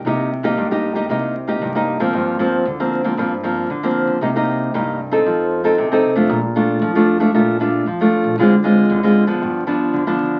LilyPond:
<<
  \new Staff \with { instrumentName = "Nylon-string guitar" } { \time 4/4 \key c \minor \tempo 4 = 115 << { <bes ees' g'>8 r16 <bes ees' g'>8 <bes ees' g'>8 <bes ees' g'>16 <bes ees' g'>8 r16 <bes ees' g'>8 <bes ees' g'>8 <f bes c'>16~ | \key g \minor <f bes c'>8 <f bes c'>8 r16 <f bes c'>8 <f bes c'>16 <f bes c'>16 r16 <f bes c'>8 r16 <f bes c'>8. | <bes ees' g'>16 <bes ees' g'>8. <bes ees' g'>8 r16 <c' ees' a'>4 <c' ees' a'>8 <c' ees' a'>8 <a d' f'>16~ | <a d' f'>16 r16 <a d' f'>8. <a d' f'>8 <a d' f'>16 <a d' f'>8 <a d' f'>8 r16 <a d' f'>8. |
<aes c' f'>16 r16 <aes c' f'>8. <aes c' f'>8 <f b d'>8. <f b d'>8. <f b d'>8. | } \\ { c4 g,4 c4 g,4 | g,4 d4 g,4 d4 | c4 g,4 f4 c4 | bes,4 f4 bes,4 f4 |
d4 d4 g,4 d4 | } >> }
  \new Staff \with { instrumentName = "Upright bass" } { \clef bass \time 4/4 \key c \minor c,8. g,16 g,8. g,16 c,4 c,8. c16 | \key g \minor g,4 d,4 g,4 d,8 r16 d,16 | c,4 c,4 f,4 c,8 r16 f,16 | bes,,4 f,4 bes,,4 f,8 r16 bes,,16 |
d,4 d,4 g,,4 f,8 d,8 | }
>>